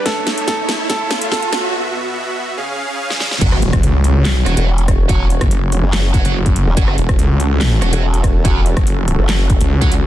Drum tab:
CC |----------------|----------------|x---------------|----------------|
HH |x-xxx-x-x-xx-xx-|----------------|x-xxx-x-x-xx-xx-|x-xxx-x-x-xx-xx-|
CP |----------------|----------------|--------x-------|--------x-------|
SD |o-o-o-o-o-o-o-o-|-------------ooo|-r-r----o-r---r-|---r----o-------|
BD |o---o---o---o---|----------------|o--o----------o-|o--o------o--o--|

CC |----------------|----------------|
HH |x-xxx-x-x-xx-xx-|x-xxx-x-x-xx-xx-|
CP |--------x-------|--------x-------|
SD |-r-r----o-r---r-|---r----o-------|
BD |o--o----------o-|o--o------o--o--|